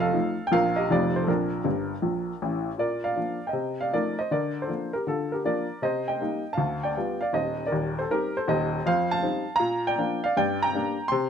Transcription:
0.00 0.16 F1 medium
0.00 0.17 F2 medium
0.00 0.42 A4 medium
0.00 0.17 D#5 medium
0.00 0.45 F5 medium
0.13 0.34 F3 medium
0.13 0.34 A3 soft
0.13 0.35 D#4 soft
0.47 0.53 G5 medium
0.52 0.84 A#1 medium
0.52 0.84 A#2 medium
0.52 0.73 F3 soft
0.52 0.73 A#3 soft
0.52 0.73 D4 soft
0.52 0.76 A#4 medium
0.52 0.77 F5 loud
0.76 0.89 G4 medium
0.76 0.89 D#5 medium
0.90 1.22 F1 medium
0.90 1.22 F2 medium
0.90 1.11 G3 soft
0.90 1.12 A3 soft
0.90 1.12 D#4 medium
0.90 1.14 F4 medium
0.90 1.16 D5 medium
1.16 1.24 C5 medium
1.23 1.28 A4 medium
1.27 1.60 A#1 medium
1.27 1.60 A#2 medium
1.27 2.38 D4 medium
1.27 2.41 A#4 medium
1.64 1.93 G1 medium
1.64 1.93 G2 medium
2.02 2.31 A#1 medium
2.02 2.31 A#2 medium
2.42 2.70 A1 medium
2.42 2.70 A2 medium
2.78 3.11 A#2 medium
2.78 3.03 A#4 medium
2.78 3.03 D5 medium
3.04 3.46 D5 medium
3.04 3.48 F5 medium
3.16 3.37 F3 soft
3.16 3.38 A#3 soft
3.16 3.37 D4 soft
3.47 3.78 D#5 soft
3.47 3.79 G5 medium
3.53 3.86 C3 medium
3.80 3.92 D5 medium
3.80 3.93 F5 medium
3.93 4.14 F3 soft
3.93 4.14 A3 soft
3.93 4.15 D#4 soft
3.93 4.17 A#4 medium
3.93 4.18 D5 medium
4.19 4.31 C5 medium
4.19 4.31 D#5 medium
4.31 4.63 D3 medium
4.31 4.61 A#4 medium
4.31 4.63 D5 medium
4.62 4.92 A4 soft
4.62 4.93 C5 medium
4.68 4.89 F3 soft
4.68 4.90 A#3 soft
4.68 4.90 D4 soft
4.93 5.06 G4 soft
4.93 5.06 A#4 medium
5.07 5.39 D3 medium
5.07 5.31 F4 soft
5.07 5.32 A4 medium
5.32 5.45 G4 medium
5.32 5.44 A#4 medium
5.44 5.66 F3 soft
5.44 5.65 A#3 soft
5.44 5.66 D4 soft
5.44 5.81 A#4 medium
5.44 5.83 D5 medium
5.82 6.14 C3 medium
5.82 6.07 C5 medium
5.82 6.07 D#5 medium
6.08 6.49 D#5 medium
6.08 6.52 G5 medium
6.21 6.41 G3 soft
6.21 6.42 A#3 soft
6.21 6.42 D#4 soft
6.53 6.82 F5 medium
6.53 6.84 A5 medium
6.58 6.90 D2 medium
6.83 7.19 D5 medium
6.83 7.21 G5 medium
6.97 7.18 G3 soft
6.97 7.18 B3 soft
6.97 7.18 F4 medium
7.21 7.34 D5 medium
7.21 7.34 F5 medium
7.33 7.63 D#1 medium
7.33 7.64 D#2 medium
7.33 7.64 C5 medium
7.33 7.65 D#5 medium
7.66 7.96 A#4 medium
7.66 7.97 D5 medium
7.72 8.02 D#1 medium
7.72 8.02 D#2 medium
7.99 8.11 A4 medium
7.99 8.10 C5 medium
8.10 8.31 G3 soft
8.10 8.31 C4 soft
8.10 8.31 D#4 soft
8.10 8.34 G4 medium
8.10 8.35 A#4 medium
8.37 8.48 A4 medium
8.37 8.49 C5 medium
8.48 8.78 D#1 medium
8.48 8.78 D#2 medium
8.48 8.84 C5 medium
8.48 8.86 D#5 medium
8.86 9.18 F2 medium
8.86 9.10 C5 medium
8.86 9.11 F5 loud
9.11 9.53 F5 medium
9.11 9.55 A5 loud
9.22 9.43 G3 soft
9.22 9.44 C4 medium
9.22 9.44 D#4 medium
9.56 9.92 A#2 medium
9.56 9.85 F5 medium
9.56 9.87 A#5 loud
9.87 10.22 D5 medium
9.87 10.25 G5 medium
9.98 10.19 F3 medium
9.98 10.20 A#3 medium
9.98 10.20 D4 medium
10.24 10.37 D5 medium
10.24 10.37 F5 medium
10.37 10.69 G2 medium
10.37 10.61 D5 medium
10.37 10.62 G5 medium
10.62 11.04 G5 medium
10.62 11.07 A#5 loud
10.75 10.96 G3 medium
10.75 10.96 A#3 soft
10.75 10.96 D4 medium
11.08 11.29 C3 medium
11.08 11.29 G5 medium
11.08 11.29 C6 medium

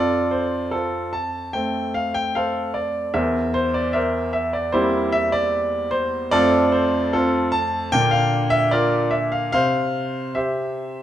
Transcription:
0.00 3.12 F2 medium
0.00 0.29 F4 medium
0.00 0.30 A4 medium
0.00 0.31 D5 loud
0.31 0.73 C5 medium
0.71 1.11 C4 medium
0.71 1.11 F4 medium
0.71 1.13 A4 medium
1.13 1.54 A5 medium
1.53 3.12 A3 soft
1.53 3.12 C4 medium
1.53 1.94 G5 medium
1.94 2.15 F5 medium
2.14 2.35 G5 medium
2.35 2.73 A4 medium
2.35 2.73 C5 medium
2.35 2.76 F5 medium
2.74 3.15 D5 medium
3.14 6.29 E2 medium
3.14 3.53 A#4 medium
3.14 3.52 C5 medium
3.14 3.55 E5 medium
3.54 3.75 C5 medium
3.74 3.95 D5 medium
3.93 4.32 A#4 medium
3.93 4.32 C5 medium
3.93 4.31 E5 medium
4.33 4.54 E5 medium
4.53 4.74 D5 medium
4.72 6.30 G3 medium
4.72 6.30 A#3 medium
4.72 6.30 C4 medium
4.72 5.12 E4 medium
4.72 5.12 G4 medium
4.72 5.14 C5 medium
5.12 5.34 E5 loud
5.32 5.93 D5 medium
5.91 6.33 C5 medium
6.31 7.87 F2 medium
6.31 7.87 F3 medium
6.31 7.87 A3 medium
6.31 7.13 C4 medium
6.31 6.71 F4 medium
6.31 6.70 A4 medium
6.31 6.73 D5 loud
6.72 7.13 C5 medium
7.13 7.51 C4 medium
7.13 7.51 F4 medium
7.13 7.53 A4 medium
7.52 7.91 A5 loud
7.92 9.50 A#2 medium
7.92 9.49 D3 medium
7.92 9.50 A#3 medium
7.92 9.50 D4 medium
7.92 8.12 G5 loud
8.11 8.51 F5 medium
8.50 8.71 E5 loud
8.71 9.10 F4 medium
8.71 9.10 A#4 medium
8.71 9.12 D5 medium
9.11 9.32 E5 medium
9.32 9.51 F5 medium
9.52 11.03 C3 medium
9.52 10.33 C5 medium
9.52 10.36 F5 loud
10.35 11.03 G4 medium
10.35 11.03 C5 soft
10.35 11.03 E5 medium

